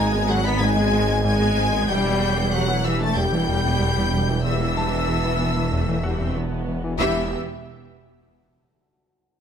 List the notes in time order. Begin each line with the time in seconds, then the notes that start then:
Already playing: G#1 G#3 D#4 G#5 A#5 G#6
0.00 G#3
0.13 G#3 B3 G#4
0.28 F#3 G#3 D#4 F#5 F#6
0.45 G#3 B3 G#4 B5 B6
0.61 G#2 G#3 D#4 G#5 G#6
0.77 G#3 B3 G#4
0.92 G#2 G#3 D#4
1.09 G#2 B3 G#4
1.25 G#2 G#3 D#4 G#5 G#6
1.41 G#2 B3 G#4
1.57 G#2 G#3 D#4
1.72 G#3 B3 G#4
1.88 E1 E2 G3 G4 G5 G6
2.04 E2 B3 E4
2.20 E2 G3 G4
2.36 E2 B3 E4
2.52 E2 F#3 G3 G4 F#5 F#6
2.68 E3 B3 E4
2.84 E3 G3 G4 E5 E6
3.00 E3 A3 B3 E4 A5 A6
3.16 E2 G3 G4 G5 G6
3.32 E3 B3 E4
3.49 E2 G3 G4
3.65 E2 B3 E4
3.81 E2 G3 G4
3.97 E2 B3 E4
4.13 E2 G3 G4
4.29 E3 B3 E4
4.44 E2 E3 G3 G4 E5 E6
4.60 E2 B3 E4
4.76 E2 G3 G4 A5
4.93 E2 B3 E4
5.08 E2 B3
5.25 E3
5.41 E3
5.56 E3
5.72 E2 A3
5.88 E3
6.03 E2 G3 F#4 F#5
6.21 E2 C4
6.36 E2 B3
6.52 E2
6.68 E2
6.84 E3
6.99 E1 E3 B3 E4 G4 E5 E6